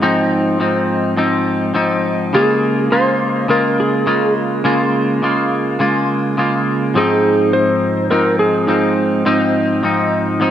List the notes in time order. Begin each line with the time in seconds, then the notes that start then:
0.02 G#2 F3 C4 D#4
0.59 G#2 F3 C4 D#4
1.17 G#2 F3 C4 D#4
1.74 G#2 F3 C4 D#4
2.33 C#3 G#3 A#3 F4 G#4
2.90 C#3 G#3 A#3 F4 C5
3.48 C#3 G#3 A#3 F4 A#4
3.80 G#4
4.06 C#3 G#3 A#3 F4
4.64 C#3 G#3 A#3 F4
5.22 C#3 G#3 A#3 F4
5.79 C#3 G#3 A#3 F4
6.37 C#3 G#3 A#3 F4
6.94 G#2 F3 C4 D#4 G#4
7.53 C5
8.10 G#2 F3 C4 D#4 A#4
8.39 G#4
8.67 G#2 F3 C4 D#4
9.25 G#2 F3 C4 D#4
9.83 G#2 F3 C4 D#4
10.40 G#2 F3 C4 D#4